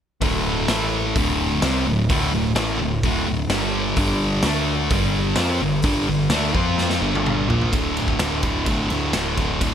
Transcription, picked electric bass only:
0.21 0.65 D1 loud
0.68 1.12 A1 loud
1.15 1.59 D1 loud
1.62 1.84 C2 loud
1.87 2.08 D1 medium
2.10 2.31 D1 medium
2.33 2.55 D1 medium
2.56 2.78 A1 loud
2.79 3.01 D1 medium
3.03 3.25 D1 loud
3.26 3.48 D1 medium
3.49 3.93 G1 loud
3.96 4.40 G1 medium
4.44 4.87 D2 loud
4.90 5.34 G1 loud
5.37 5.59 F2 loud
5.61 5.83 G1 medium
5.84 6.06 G1 medium
6.08 6.30 G1 medium
6.30 6.53 D2 loud
6.55 6.99 F2 medium
7.01 7.45 G1 medium
7.47 7.70 A#1 loud
7.73 7.95 D1 medium
7.96 8.18 D1 medium
8.20 8.42 D1 medium
8.43 8.65 D1 medium
8.67 8.89 G1 medium
8.91 9.13 D2 medium
9.13 9.36 D1 medium
9.37 9.60 D1 medium
9.61 9.74 D1 medium

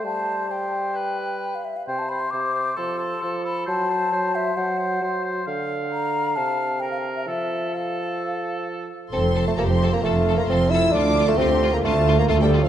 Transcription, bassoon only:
0.04 1.65 G3 medium
1.88 2.28 C3 soft
2.33 2.73 C3 medium
2.78 3.18 F3 medium
3.23 3.63 F3 soft
3.68 4.07 F#3 medium
4.13 4.52 F#3 medium
4.57 4.97 F#3 medium
5.02 5.41 F#3 medium
5.47 6.38 D3 medium
6.36 7.29 C3 medium
7.28 8.90 F3 medium
9.12 9.44 C4 medium
9.48 9.53 A3 medium
9.58 9.64 A#3 medium
9.70 9.92 C4 medium
9.93 9.98 A#3 medium
10.03 10.37 A3 medium
10.37 10.42 A#3 medium
10.49 10.72 C4 medium
10.70 10.94 E4 medium
10.92 11.27 D4 medium
11.28 11.39 A3 medium
11.38 11.75 C4 medium
11.73 11.84 A#3 medium
11.84 12.18 A3 medium
12.19 12.29 A#3 medium
12.29 12.41 A3 medium
12.42 12.65 G3 medium
12.63 12.69 F3 medium

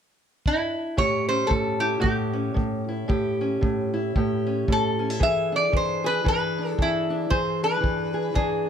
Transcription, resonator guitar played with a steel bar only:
0.47 1.01 E4 medium
0.98 1.28 C#5 medium
1.29 1.51 C5 medium
1.47 1.82 A4 medium
1.80 2.00 G4 medium
2.01 2.83 G4 medium
4.72 5.24 A4 medium
5.23 5.55 E5 medium
5.56 5.73 D5 medium
5.76 6.05 C5 medium
6.06 6.27 B4 medium
6.28 6.70 B4 medium
6.70 6.81 A4 medium
6.82 7.30 E4 medium
7.30 7.61 C5 medium
7.64 8.39 B4 medium
8.35 8.69 G#4 medium

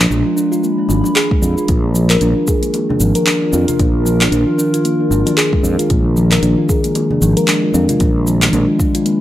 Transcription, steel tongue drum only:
0.11 0.25 D4 loud
0.26 0.32 F4 medium
0.37 0.51 D4 loud
0.52 0.59 F4 loud
0.63 0.72 A#3 medium
0.78 0.88 D4 medium
0.89 1.03 D4 medium
1.04 1.11 D4 medium
1.16 1.30 G#4 loud
1.31 1.42 G#3 loud
1.42 1.56 D4 loud
1.57 1.68 F4 loud
1.69 1.77 A#3 medium
1.84 1.94 D4 medium
1.94 2.09 F3 medium
2.10 2.20 A#4 loud
2.21 2.36 D4 loud
2.36 2.43 F4 medium
2.47 2.56 G#4 loud
2.62 2.72 A#3 medium
2.74 2.83 A#3 medium
2.89 2.99 D4 medium
3.00 3.14 F3 medium
3.15 3.26 A#4 medium
3.26 3.41 D4 medium
3.42 3.48 F4 medium
3.53 3.67 D4 medium
3.68 3.75 F4 loud
3.79 3.94 D4 medium
3.95 4.04 F3 medium
4.05 4.19 F3 loud
4.21 4.27 D4 medium
4.32 4.46 D4 loud
4.47 4.53 F4 medium
4.58 4.72 D4 medium
4.74 4.80 F4 medium
4.85 4.93 A#3 medium
5.00 5.10 D4 medium
5.11 5.25 D4 medium
5.26 5.33 D4 medium
5.37 5.51 G#4 loud
5.53 5.63 G#3 loud
5.64 5.77 D4 medium
5.79 5.89 F4 loud
5.90 5.99 A#3 medium
6.05 6.15 D4 medium
6.16 6.30 F3 loud
6.32 6.42 A#4 medium
6.43 6.57 D4 loud
6.58 6.64 F4 medium
6.69 6.78 G#4 loud
6.84 6.94 A#3 medium
6.95 7.04 A#3 medium
7.11 7.21 D4 medium
7.22 7.35 F3 loud
7.37 7.47 A#4 medium
7.48 7.63 D4 loud
7.63 7.70 F4 medium
7.74 7.88 D4 medium
7.89 7.96 F4 loud
8.00 8.15 D4 loud
8.16 8.25 F3 medium
8.26 8.40 F3 medium
8.42 8.48 D4 medium
8.53 8.67 D4 loud
8.68 8.75 F4 medium
8.79 8.93 D4 loud
8.95 9.01 F4 medium
9.05 9.14 A#3 medium

